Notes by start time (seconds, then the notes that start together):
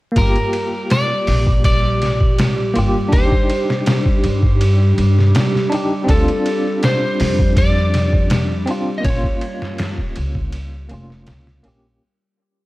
0.12 A#3
0.16 G1 G3 F4 G4 A#4, kick, ride
0.22 G4
0.36 ride
0.53 ride
0.90 D5, snare, ride
1.27 A#1, snare, open hi-hat
1.47 kick
1.64 D5, kick, ride
2.02 snare, ride
2.21 kick
2.39 snare, ride
2.74 G1 A#3 F4, ride
2.79 G4
3.09 D#2 D4, kick, ride
3.13 D#4 C5
3.18 G4
3.32 kick
3.50 ride
3.70 snare
3.86 snare, ride
4.06 kick
4.24 G2, ride
4.43 kick
4.61 ride
4.98 G2, ride
5.19 snare
5.35 snare, ride
5.55 snare
5.70 D4 D#4, ride
5.75 G4
6.04 C4
6.08 D2 D4 A4, kick, ride
6.28 ride
6.46 ride
6.83 C5, snare, ride
7.20 F2, snare, open hi-hat
7.39 kick
7.57 D5, kick, ride
7.94 snare, ride
8.13 kick
8.30 snare, ride
8.66 C4 D4, ride
8.71 F4
8.98 A#3 D#5
9.04 A#1 C#4 C#5, kick, ride
9.10 F4
9.24 kick
9.41 ride
9.62 snare
9.78 snare, ride
9.98 kick
10.16 C#2, ride
10.35 kick
10.52 ride
10.89 F1 A#3 C#4, ride
10.94 F4
11.10 snare
11.27 C#2, snare, ride
11.47 snare
11.63 A#1 A#3 C#4, ride
11.68 G4